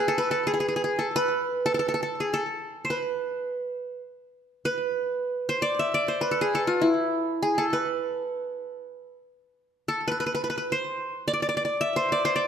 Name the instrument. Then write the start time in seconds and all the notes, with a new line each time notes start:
qanun
Already playing: B4
0.00 G#4
0.08 A4
0.18 B4
0.31 A4
0.47 G#4
0.54 G#4
0.60 G#4
0.68 G#4
0.76 G#4
0.84 G#4
0.99 A4
1.16 B4
1.66 A4
1.74 A4
1.79 A4
1.88 A4
1.94 A4
2.03 A4
2.20 G#4
2.34 A4
2.85 C5
2.90 B4
4.65 B4
5.49 C5
5.62 D5
5.79 E5
5.94 D5
6.08 C5
6.21 B4
6.31 A4
6.41 G#4
6.55 A4
6.67 F4
6.81 E4
7.42 G#4
7.58 A4
7.73 B4
9.88 A4
10.08 B4
10.20 B4
10.26 B4
10.35 B4
10.44 B4
10.50 B4
10.58 B4
10.72 C5
11.28 D5
11.33 D5
11.42 D5
11.49 D5
11.57 D5
11.65 D5
11.81 E5
11.96 C5
12.12 D5
12.25 C5
12.36 D5